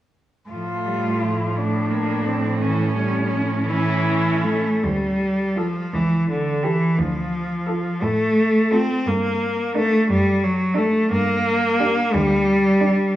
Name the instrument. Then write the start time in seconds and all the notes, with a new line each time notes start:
cello
0.49 A2 F3 A3 F4
0.86 G3
1.23 F3
1.56 A3 D4
1.90 A#3
2.26 C4
2.60 E3 C#4
2.95 G3
3.30 F3
3.66 E3 C#4 E4
4.44 A3
4.84 D2 G3
5.56 F3 F4 A4
5.93 C#2 E3
6.30 D3
6.63 E3 G4 A4
6.99 D2 F3
7.67 F4 A4
8.02 A2 A3
8.71 C4 F4 A4
9.06 G2 A#3
9.75 A3 D4 A#4
10.10 F#2 G3
10.44 F#3
10.74 A3 D4 A4
11.11 G2 A#3
11.79 D4 G4
12.13 D2 G3
12.81 D4 G4